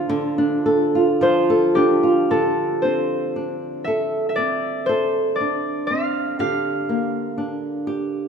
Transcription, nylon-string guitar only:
Already playing: F3 D4 F4 A4
0.09 D3
0.38 D4
0.66 A4
0.95 F4
1.21 F3
1.50 A4
1.76 D4
2.03 F4
2.31 D3 A4
2.84 C4
3.36 D4
3.87 A4
4.38 C4
4.89 A4
5.40 D4
5.91 C4
6.39 D3 G4
6.89 A#3
7.38 D4
7.87 G4

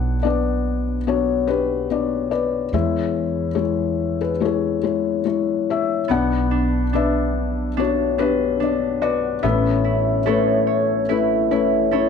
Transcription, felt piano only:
Already playing: B1 B2 B3 D4 D5 F#5
0.23 B3 D4 B4 D5
1.07 B3 D4 F#4 C#5
1.47 B3 D4 G4 B4 C#5
1.90 B3 D4 D5
2.31 B4 D5
2.74 E2 E3 G#3 E4 C#5 E5
3.55 G#3 E4 G#4 C#5
4.21 G#4 B4
4.40 G#3 E4 C#5
4.45 G#4 C#5
4.83 G#3 E4 C#5
5.25 G#3 E4 C#5
5.70 C#5 E5
6.10 B1 B2 B3 D4 D5 F#5
6.95 B3 D4 B4 D5 E5
7.77 B3 D4 F#4 C#5
8.19 B3 D4 G4 B4 C#5
8.62 B3 D4 D5
9.02 B4 D5
9.43 A1 A2 A3 C#4 B4 C#5 E5
10.26 A3 C#4 A4 B4 C#5
11.09 A3 C#4 E4 B4
11.51 A3 C#4 A4 B4 C#5
11.92 A3 C#4 E4

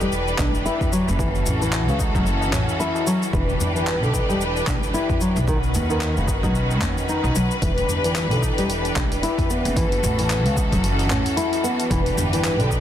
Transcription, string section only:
Already playing: E3 D4 G4 B4
1.19 C#4 F#4 A4
3.33 D4 G4 B4
5.47 D#3 C#4 F#4 B4
7.62 E3 D4 G4
9.77 C#4 F#4 A4
11.91 D4 G4 B4

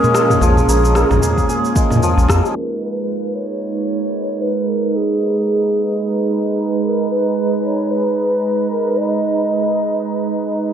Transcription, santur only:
Already playing: F3 G#3 A#3 G#4
0.15 G#3
0.42 F3
0.69 A#3
0.95 A#3
1.22 G#4
1.49 G#4
1.76 G#3
2.03 F3
2.29 A#3

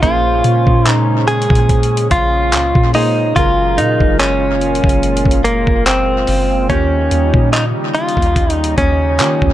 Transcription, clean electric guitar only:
0.03 F4
0.91 D#4
1.28 G#4
2.11 F4
2.95 D#4
3.36 F4
3.78 D#4
4.20 C#4
5.44 A#3
5.86 C4
6.70 C#4
7.53 D#4
7.95 F4
8.52 D#4
8.78 C#4

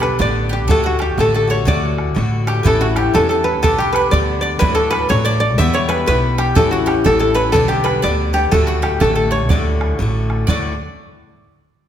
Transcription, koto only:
Already playing: G4 A4
0.03 B4
0.21 D5
0.53 G4
0.71 A4
0.86 F#4
1.01 G4
1.20 A4
1.36 A4
1.51 C#5
1.68 D5
2.47 G4
2.67 A4
2.81 F#4
2.96 G4
3.15 A4
3.29 A4
3.44 B4
3.63 A4
3.78 G4
3.93 B4
4.11 D5
4.41 D5
4.59 B4
4.75 A4
4.90 B4
5.10 C#5
5.25 D5
5.40 D5
5.58 E5
5.74 C#5
5.88 B4
6.07 B4
6.38 G4
6.56 A4
6.71 F#4
6.87 G4
7.06 A4
7.20 A4
7.35 B4
7.52 A4
7.68 G4
7.84 B4
8.03 D5
8.34 G4
8.51 A4
8.67 F#4
8.83 G4
9.01 A4
9.16 A4
9.32 C#5
9.50 D5
10.49 D5

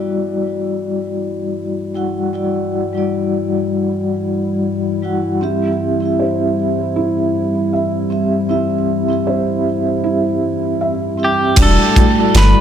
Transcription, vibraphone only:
Already playing: G3 E4 F#4 D5
1.94 G3 E4 F#4 F#5
2.33 G3 E4 F#4 D5
2.93 G3 E4 F#4
2.98 D5
5.02 G3 E4 F#4 F#5
5.41 C4 E4 G4 E5
6.00 C4 E4 G4
6.05 E5
8.10 C4 E4 G4 E5
8.49 C4 E4 G4 E5
9.08 C4 E4 G4
9.13 E5
11.18 C4 E4 G4 E5
11.57 G3 E4 F#4 D5
12.16 G3 E4 F#4
12.20 D5

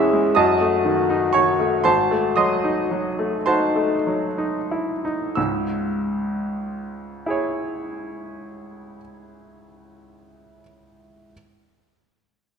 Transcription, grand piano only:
Already playing: E2 E3 G#3 C#4 E5 F#5 C#6 E6 F#6
0.13 G#3
0.35 F#2 D#5 A5 D#6
0.61 A3
0.85 D#3
1.10 D#4
1.33 D#3 C#5 C#6
1.60 A3
1.84 G#1 C5 A5 C6
2.11 A3
2.36 F#3 D#5 C6 D#6
2.64 D#4
2.91 F#3
3.19 A3
3.46 F#4 C5 A5 C6
3.76 A3
4.07 F#3
4.38 D#4
4.71 E4
5.05 D#4
5.35 C#2 G#2 E6
7.26 E4 G#4 C#5

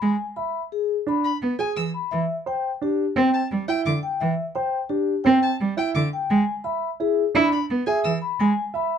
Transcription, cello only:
0.02 G#3
1.42 B3
1.77 E3
2.12 E3
3.16 C4
3.52 G3
3.86 D3
4.21 E3
5.26 C4
5.61 G3
5.95 D3
6.30 G#3
7.35 E4
7.70 B3
8.05 E3
8.40 G#3

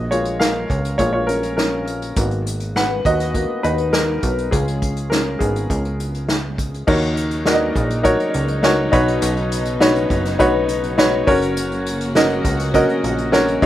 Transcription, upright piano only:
Already playing: F#4 D#5
0.11 G#3 A#3 F4 C#5
0.40 A#4 F5
0.98 G#3 A#3 F4 C#5
1.13 F4 C#5
1.27 C#4 A#4
1.57 C#4 A#4
2.17 A#3 B3 F#4
2.76 B4 F#5
3.06 F#4 D#5
3.35 A#3 B3 F#4
3.63 D#4 B4
3.93 D#4 A#4
4.51 G#3 C#4 F4 G#4
5.10 C#4 A#4
5.39 B3 G#4
6.87 D#3 D#4 F#4 A#4 C#5
7.46 D#4 F#4 A#4 D5
7.54 D#5
8.03 D#4 F#4 A#4 C#5
8.63 D#4 F#4 A#4 C#5
8.92 B2 D#4 F#4 B4 C#5
9.80 D#4 F#4 B4 C#5
10.39 D#4 F#4 B4 C#5
10.98 D#4 F#4 B4 C#5
11.27 C#4 F#4 A#4 C#5
12.15 C#4 F#4 A#4 D#5
12.74 C#4 F#4 A#4 D#5
13.32 C#4 F#4 A#4 C#5
13.62 C#3 D#4

